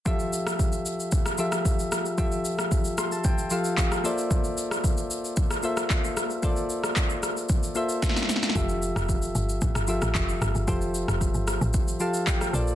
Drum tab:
SH |x-x-x-x-x-x-x-x-x-x-x-x-x-x-x-x-|x-x-x-x-x-x-x-x-x-x-x-x-x-x-x-x-|x-x-x-x-x-x-x-x-x-x-x-x-x-x-x-x-|x-x-x-x-x-x-x-x-x-x-x-x-x-x-x-x-|
CP |--------------------------------|------------------------x-------|------------------------x-------|--------x-----------------------|
SD |------r-----------r---r-----r---|------r-----r-------------r-----|------r-----------r---r-----r---|------r-----r-----------oooooooo|
BD |o-------o-------o-------o-------|o-------o-------o-------o-------|o-------o-------o-------o-------|o-------o-------o-------o-------|

SH |x-x-x-x-x-x-x-x-x-x-x-x-x-x-x-x-|x-x-x-x-x-x-x-x-x-x-x-x-x-x-x-x-|
CP |------------------------x-------|------------------------x-------|
SD |------r-----------r---r-----r---|------r-----r-------------r-----|
BD |o-------o-------o-------o-------|o-------o-------o-------o-------|